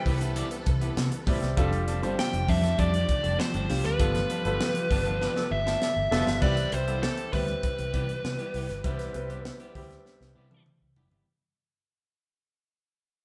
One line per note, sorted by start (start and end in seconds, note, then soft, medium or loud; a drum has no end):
0.00 1.53 E3 medium
0.00 1.27 G3 loud
0.00 1.27 C4 medium
0.00 1.53 C4 medium
0.00 1.27 E4 medium
0.00 1.55 A4 loud
0.00 1.53 B4 medium
0.00 1.59 B4 loud
0.00 1.59 C5 medium
0.05 0.41 C2 medium
0.05 0.21 B3 medium
0.05 0.20 E4 medium
0.05 0.20 G4 loud
0.05 0.20 B4 medium
0.05 kick medium
0.05 open hi-hat medium
0.21 0.34 B3 soft
0.21 0.35 E4 medium
0.21 0.35 G4 medium
0.21 0.36 B4 medium
0.21 closed hi-hat medium
0.36 0.55 B3 medium
0.36 0.50 E4 medium
0.36 0.50 G4 medium
0.36 0.50 D5 loud
0.36 closed hi-hat medium
0.51 muted clean electric guitar stroke soft
0.51 closed hi-hat soft
0.66 0.90 C2 medium
0.66 muted clean electric guitar stroke soft
0.66 kick medium
0.66 closed hi-hat medium
0.81 0.97 B3 medium
0.81 0.97 E4 medium
0.81 0.97 G4 medium
0.81 0.96 B4 medium
0.81 closed hi-hat soft
0.97 1.09 C3 loud
0.97 snare loud
1.11 muted clean electric guitar stroke soft
1.11 closed hi-hat medium
1.26 1.39 A2 medium
1.26 1.46 G3 medium
1.26 1.46 B3 medium
1.26 1.46 C4 medium
1.26 1.42 E4 medium
1.26 1.46 E4 medium
1.26 1.41 G4 medium
1.26 1.41 B4 medium
1.26 1.47 D5 medium
1.26 kick medium
1.26 open hi-hat medium
1.42 1.54 C2 medium
1.42 muted clean electric guitar stroke soft
1.42 snare soft
1.42 closed hi-hat soft
1.57 2.03 F1 loud
1.57 6.39 F3 medium
1.57 1.86 G3 loud
1.57 1.77 G3 medium
1.57 6.38 A3 medium
1.57 1.72 C4 loud
1.57 1.86 D4 medium
1.57 3.98 D4 medium
1.57 1.72 D4 medium
1.57 1.86 F4 loud
1.57 3.98 G4 medium
1.57 1.86 A4 loud
1.57 1.71 A4 loud
1.57 kick loud
1.57 closed hi-hat medium
1.72 muted clean electric guitar stroke soft
1.72 closed hi-hat medium
1.87 2.03 G3 medium
1.87 2.02 C4 medium
1.87 2.02 D4 medium
1.87 2.01 A4 medium
1.87 closed hi-hat medium
2.02 2.15 G1 medium
2.02 2.79 G3 medium
2.02 2.16 G3 medium
2.02 2.17 C4 medium
2.02 2.79 D4 medium
2.02 2.17 D4 medium
2.02 2.79 F4 medium
2.02 2.17 A4 medium
2.02 2.80 C5 medium
2.02 closed hi-hat soft
2.18 2.50 G5 loud
2.18 muted clean electric guitar stroke soft
2.18 snare loud
2.33 2.45 F1 loud
2.33 muted clean electric guitar stroke soft
2.33 closed hi-hat medium
2.48 2.72 F2 loud
2.48 2.63 G3 medium
2.48 2.63 C4 medium
2.48 2.62 D4 medium
2.48 2.62 A4 medium
2.48 2.77 E5 loud
2.48 kick medium
2.48 open hi-hat medium
2.63 2.77 G3 soft
2.63 2.77 C4 medium
2.63 2.78 D4 medium
2.63 2.78 A4 medium
2.63 snare soft
2.63 closed hi-hat medium
2.78 3.02 F2 loud
2.78 2.98 G3 medium
2.78 2.93 C4 medium
2.78 2.93 D4 loud
2.78 2.92 A4 loud
2.78 3.42 D5 loud
2.78 kick medium
2.78 closed hi-hat medium
2.93 muted clean electric guitar stroke soft
2.93 closed hi-hat medium
3.08 muted clean electric guitar stroke soft
3.08 kick medium
3.08 closed hi-hat medium
3.23 3.36 F1 medium
3.23 3.37 G3 soft
3.23 3.38 C4 soft
3.23 3.38 D4 medium
3.23 3.38 A4 medium
3.23 closed hi-hat soft
3.39 3.85 C5 medium
3.39 muted clean electric guitar stroke soft
3.39 snare loud
3.53 3.66 G1 medium
3.53 3.68 G3 medium
3.53 3.68 C4 medium
3.53 3.68 D4 medium
3.53 3.68 A4 medium
3.53 closed hi-hat soft
3.69 3.81 C2 medium
3.69 3.88 G3 medium
3.69 3.89 D4 medium
3.69 3.89 F4 medium
3.69 3.89 G4 medium
3.69 muted clean electric guitar stroke soft
3.69 snare soft
3.69 open hi-hat medium
3.84 3.97 D2 medium
3.84 5.78 B4 medium
3.84 muted clean electric guitar stroke soft
3.84 snare soft
3.84 closed hi-hat medium
3.99 4.23 G1 loud
3.99 4.19 F3 medium
3.99 4.28 G3 medium
3.99 4.28 B3 medium
3.99 4.14 B3 loud
3.99 6.40 B3 medium
3.99 4.14 D4 loud
3.99 4.28 F4 medium
3.99 6.40 G4 medium
3.99 4.29 A4 medium
3.99 4.14 B4 loud
3.99 kick loud
3.99 closed hi-hat medium
4.14 muted clean electric guitar stroke soft
4.14 snare soft
4.14 closed hi-hat soft
4.29 4.45 F3 medium
4.29 4.44 B3 medium
4.29 4.44 D4 medium
4.29 4.44 A4 medium
4.29 closed hi-hat medium
4.45 4.57 G1 medium
4.45 4.59 F3 soft
4.45 5.21 G3 medium
4.45 5.22 B3 medium
4.45 4.59 B3 medium
4.45 4.59 D4 medium
4.45 5.22 F4 medium
4.45 5.22 A4 medium
4.45 4.60 B4 medium
4.45 closed hi-hat soft
4.60 muted clean electric guitar stroke soft
4.60 snare loud
4.75 muted clean electric guitar stroke soft
4.75 closed hi-hat medium
4.90 5.26 G1 medium
4.90 5.05 F3 medium
4.90 5.05 B3 medium
4.90 5.05 D4 medium
4.90 5.04 A4 loud
4.90 kick medium
4.90 open hi-hat medium
5.06 5.19 F3 soft
5.06 5.20 B3 medium
5.06 5.20 D4 medium
5.06 5.21 A4 medium
5.06 closed hi-hat soft
5.21 5.40 F3 medium
5.21 5.36 B3 medium
5.21 5.35 D4 medium
5.21 5.36 B4 loud
5.21 snare medium
5.36 5.49 F3 medium
5.36 5.49 D4 medium
5.36 5.49 A4 medium
5.36 muted clean electric guitar stroke soft
5.36 snare medium
5.51 5.75 G1 medium
5.51 6.41 E5 loud
5.51 muted clean electric guitar stroke soft
5.66 5.82 F3 soft
5.66 5.82 B3 medium
5.66 5.82 D4 medium
5.66 5.81 A4 medium
5.66 snare medium
5.82 5.94 F3 medium
5.82 5.95 D4 medium
5.82 5.95 A4 medium
5.82 snare medium
5.96 6.08 G1 medium
5.96 muted clean electric guitar stroke soft
6.11 6.23 F1 medium
6.11 6.31 F3 loud
6.11 6.31 F3 medium
6.11 6.31 G3 medium
6.11 6.31 B3 medium
6.11 6.27 B3 medium
6.11 6.31 D4 medium
6.11 6.26 D4 medium
6.11 6.31 F4 medium
6.11 6.31 A4 loud
6.11 6.26 A4 medium
6.11 6.31 B4 loud
6.11 snare loud
6.27 6.39 G1 medium
6.27 muted clean electric guitar stroke soft
6.27 snare medium
6.42 6.66 C2 loud
6.42 11.23 E3 medium
6.42 11.23 G3 medium
6.42 6.61 G3 loud
6.42 6.61 G3 medium
6.42 6.67 G3 medium
6.42 6.57 B3 medium
6.42 8.82 C4 medium
6.42 6.61 C4 medium
6.42 6.66 E4 loud
6.42 6.56 E4 medium
6.42 6.62 E4 medium
6.42 11.23 G4 medium
6.42 6.56 G4 loud
6.42 6.66 B4 loud
6.42 6.62 B4 medium
6.42 6.73 D5 loud
6.42 kick loud
6.42 crash medium
6.57 muted clean electric guitar stroke soft
6.57 closed hi-hat medium
6.72 7.08 C2 medium
6.72 7.11 G3 medium
6.72 7.11 C4 medium
6.72 7.11 E4 medium
6.72 7.01 C5 medium
6.72 7.11 C5 medium
6.72 muted clean electric guitar stroke soft
6.72 closed hi-hat medium
6.87 7.03 G3 medium
6.87 7.00 A3 medium
6.87 7.03 B3 medium
6.87 7.03 E4 medium
6.87 7.00 F4 medium
6.87 7.03 G4 medium
6.87 7.00 A4 medium
6.87 closed hi-hat soft
7.02 7.27 E3 medium
7.02 7.27 C4 medium
7.02 7.27 G4 loud
7.02 7.33 A4 medium
7.02 snare loud
7.17 muted clean electric guitar stroke medium
7.17 closed hi-hat medium
7.33 7.57 D2 medium
7.33 7.52 G3 medium
7.33 8.09 G3 medium
7.33 7.48 B3 loud
7.33 8.10 C4 medium
7.33 7.47 E4 loud
7.33 8.10 E4 medium
7.33 7.47 G4 loud
7.33 10.62 B4 medium
7.33 8.10 B4 medium
7.33 kick medium
7.33 open hi-hat medium
7.48 muted clean electric guitar stroke soft
7.48 closed hi-hat medium
7.63 muted clean electric guitar stroke soft
7.63 kick medium
7.63 closed hi-hat medium
7.78 7.90 C2 medium
7.78 muted clean electric guitar stroke soft
7.78 closed hi-hat medium
7.93 8.17 C3 medium
7.93 8.12 G3 medium
7.93 8.08 B3 medium
7.93 8.08 E4 medium
7.93 8.07 G4 loud
7.93 kick medium
7.93 closed hi-hat medium
8.08 muted clean electric guitar stroke soft
8.08 closed hi-hat soft
8.24 8.36 C3 loud
8.24 muted clean electric guitar stroke soft
8.24 snare medium
8.39 8.53 G3 medium
8.39 8.54 B3 medium
8.39 8.54 E4 medium
8.39 8.54 G4 medium
8.39 closed hi-hat soft
8.54 8.66 C2 medium
8.54 8.69 G3 medium
8.54 8.70 B3 medium
8.54 8.69 E4 medium
8.54 8.69 G4 medium
8.54 open hi-hat medium
8.69 8.81 G1 medium
8.69 muted clean electric guitar stroke medium
8.69 snare soft
8.69 closed hi-hat soft
8.84 9.08 C2 loud
8.84 9.03 G3 medium
8.84 9.12 G3 medium
8.84 9.13 B3 medium
8.84 9.03 C4 medium
8.84 11.24 D4 medium
8.84 9.04 E4 medium
8.84 9.13 E4 medium
8.84 9.13 G4 loud
8.84 9.04 B4 loud
8.84 kick loud
8.84 closed hi-hat medium
8.99 snare soft
8.99 closed hi-hat medium
9.14 9.50 C2 loud
9.14 9.53 G3 medium
9.14 9.53 C4 medium
9.14 9.53 E4 medium
9.14 9.53 B4 loud
9.14 muted clean electric guitar stroke soft
9.14 closed hi-hat medium
9.30 9.44 G3 medium
9.30 9.44 B3 medium
9.30 9.44 E4 medium
9.30 9.45 G4 medium
9.30 closed hi-hat soft
9.45 snare loud
9.60 9.74 G3 medium
9.60 9.74 B3 medium
9.60 9.75 E4 medium
9.60 9.75 G4 medium
9.60 closed hi-hat medium
9.75 9.99 D2 medium
9.75 10.52 G3 medium
9.75 9.90 G3 medium
9.75 9.90 B3 medium
9.75 10.52 C4 medium
9.75 10.52 E4 medium
9.75 9.89 E4 medium
9.75 10.52 G4 loud
9.75 9.89 G4 medium
9.75 kick medium
9.75 open hi-hat medium
9.90 muted clean electric guitar stroke soft
9.90 snare soft
9.90 closed hi-hat soft
10.05 muted clean electric guitar stroke soft
10.05 snare medium
10.21 10.32 C2 medium
10.21 muted clean electric guitar stroke soft
10.21 snare medium
10.35 10.60 C3 medium
10.35 10.51 G3 medium
10.35 10.50 B3 loud
10.35 10.50 E4 loud
10.35 10.50 G4 medium
10.51 10.64 G3 medium
10.51 10.65 B3 medium
10.51 10.65 E4 medium
10.51 10.66 A4 medium
10.51 high tom medium
10.66 muted clean electric guitar stroke soft
10.66 mid tom medium
10.81 10.93 C2 medium
10.81 muted clean electric guitar stroke soft
10.96 11.08 F1 medium
10.96 11.11 G3 medium
10.96 11.11 B3 medium
10.96 11.10 E4 medium
10.96 11.10 G4 medium
10.96 floor tom medium
11.11 11.23 G1 medium
11.11 11.27 G3 medium
11.11 11.27 B3 medium
11.11 11.27 E4 medium
11.11 11.26 G4 medium
11.11 floor tom medium